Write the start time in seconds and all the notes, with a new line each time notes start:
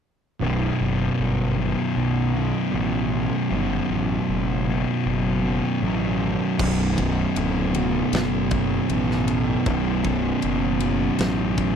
0.40 B0 B1 F#2
0.44 B2
0.81 F#1
1.19 G1
1.57 B1 F#2 B2
1.97 B1
2.34 B1 F#2 B2
2.72 A1 B1 F#2 B2
3.50 G1 B1 F#2
3.54 B2
3.90 A1
4.29 F#1
4.67 B1 F#2 B2
5.06 F#1
5.43 B1 F#2 B2
5.82 A1 B1 F#2 B2
6.59 B0 B1 F#2, kick, crash
6.64 B2
6.98 kick, ride
7.36 D1, ride
7.74 B1 F#2 B2, ride
8.13 F#1, snare, ride
8.51 kick, ride
8.89 A1 B1 F#2 B2, ride
9.11 snare
9.28 ride
9.66 B0 B1 F#2 B2, kick, ride
10.04 kick, ride
10.42 F#1, ride
10.80 F#2 B2, ride
10.85 B1
11.19 A1, snare, ride
11.58 kick, ride